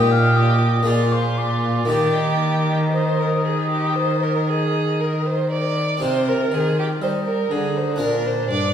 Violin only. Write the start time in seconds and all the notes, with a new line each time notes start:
Already playing: G4
0.87 F4
1.89 G4
2.92 C5
3.19 A#4
3.45 G#4
3.70 G4
3.95 C5
4.22 A#4
4.49 G#4
5.01 A#4
5.26 C5
5.52 D5
6.04 C5
6.28 A#4
6.54 G#4
6.79 G4
7.03 C5
7.27 A#4
7.52 G#4
7.77 C5
8.02 A#4
8.27 C5
8.51 D5